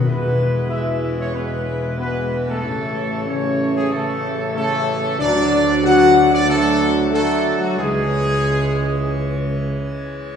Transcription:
<<
  \new Staff \with { instrumentName = "Trumpet section" } { \time 4/4 \key e \mixolydian \tempo 4 = 93 b'4 e''8. cis''16 b'4 b'8. a'16~ | a'4 cis''8. gis'16 a'4 a'4 | d''4 fis''8. d''16 a'4 a'8. fis'16 | gis'2. r4 | }
  \new Staff \with { instrumentName = "Pipe organ" } { \time 4/4 \key e \mixolydian b'1 | cis''1 | d''1 | cis''1 | }
  \new Staff \with { instrumentName = "Pipe organ" } { \clef bass \time 4/4 \key e \mixolydian << { <e e'>1~ | <e e'>1 | <d fis'>1 | <e e'>1 | } \\ { gis1 | a1~ | a1 | gis1 | } >> }
  \new Staff \with { instrumentName = "French horn section" } { \time 4/4 \key e \mixolydian b4 e'8. cis'16 b4 b8. a16~ | a4 cis'8. gis16 a4 a4 | d'4 fis'8. d'16 a4 a8. fis16 | gis2. r4 | }
  \new Staff \with { instrumentName = "Trombone section" } { \clef bass \time 4/4 \key e \mixolydian <b, gis>4 <b, gis>4 <b, gis>4 <b, gis>4 | <cis a>4 <cis a>4 <cis a>4 <cis a>4 | <d fis>4 <d fis>4 <d fis>4 <d fis>4 | <e gis>2.~ <e gis>8 r8 | }
  \new Staff \with { instrumentName = "Tuba" } { \clef bass \time 4/4 \key e \mixolydian e,,1 | a,,1 | d,2.~ d,8 r8 | cis,2.~ cis,8 r8 | }
>>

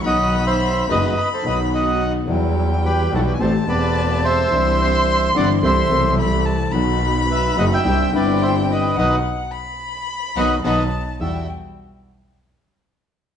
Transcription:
<<
  \new Staff \with { instrumentName = "Violin" } { \time 4/4 \key e \minor \tempo 4 = 108 b''2 b''4. r8 | g''4.~ g''16. gis''32 a''2 | c'''2 c'''4 b''8 a''8 | b''2 g''2 |
fis''4 b''2 a''4 | g''8 r2. r8 | }
  \new Staff \with { instrumentName = "Bandoneon" } { \time 4/4 \key e \minor <dis'' fis''>8. <c'' e''>8. <b' dis''>8. <a' c''>16 <b' dis''>8 <dis'' fis''>8. r16 | r4 <g' b'>8 <fis' a'>16 <g' b'>16 <a' c''>8 <b' d''>4 <c'' e''>8~ | <c'' e''>8 <c'' e''>4 <d'' fis''>8 <c'' e''>4 r4 | r4 <b' e''>8 <dis'' fis''>16 <e'' g''>8. <b' d''>8 <c'' e''>8 <b' dis''>8 |
<b' dis'' fis''>8 r2 <b' dis'' fis''>8 <b' dis'' fis''>8 r8 | e''8 r2. r8 | }
  \new Staff \with { instrumentName = "String section" } { \time 4/4 \key e \minor <dis fis fis'>4. <b dis' fis'>8 r8 <b dis' fis'>4. | <fis g e'>4. <g e' fis'>8 <a c' g'>8 <a c' g'>4. | <c' d' e'>4. <c' d' e'>8 <a c' e'>8 <a c' e'>4. | <b dis' fis'>4. <b dis' fis'>8 <c' d' e'>8 <c' d' e'>4. |
<b dis' fis'>8 r2 <b dis' fis'>8 <b dis' fis'>8 r8 | <g e' fis'>8 r2. r8 | }
  \new Staff \with { instrumentName = "Grand piano" } { \clef bass \time 4/4 \key e \minor <b,, b, dis fis fis'>4. <fis,, fis, dis fis b fis'>8 r8 <b,, b, dis fis b fis'>4. | <e, e fis g b>4. <b,, b, e g b fis'>8 <a,, a, e a c' g'>8 <e,, e, e a c' g'>4. | <c, c e c' d' g'>4. <g,, g, e c' d' g'>8 <c, c e a c' a'>8 <c, c e a c' a'>4. | <b,, b, dis fis b fis'>4. <fis,, fis, dis fis b fis'>8 <c, c d g c' e'>8 <g,, g, d g c' e'>4. |
<b, dis fis>8 r2 <b, dis fis>8 <b, dis fis>8 r8 | <e, g e' fis'>8 r2. r8 | }
  \new Staff \with { instrumentName = "Double bass" } { \clef bass \time 4/4 \key e \minor b,,4. fis,,8 r8 b,,4. | e,4. b,,8 a,,8 e,,4. | c,4. g,,8 c,8 c,4. | b,,4. fis,,8 c,8 g,,4. |
b,,8 r2 b,,8 b,,8 r8 | e,8 r2. r8 | }
>>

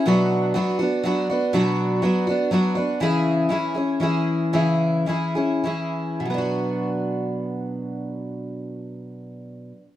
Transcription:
\new Staff \with { instrumentName = "Twelve-string acoustic guitar" } { \time 3/4 \key b \dorian \tempo 4 = 113 <b, fis b d' fis'>4 <fis b d' fis'>8 <b d' fis'>8 <fis b d' fis'>8 <b d' fis'>8 | <b, fis b d' fis'>4 <fis b d' fis'>8 <b d' fis'>8 <fis b d' fis'>8 <b d' fis'>8 | <cis e cis' e' gis'>4 <e cis' e' gis'>8 <cis' e' gis'>8 <e cis' e' gis'>4 | <cis e cis' e' gis'>4 <e cis' e' gis'>8 <cis' e' gis'>8 <e cis' e' gis'>4 |
<b, fis b d' fis'>2.~ | <b, fis b d' fis'>2. | }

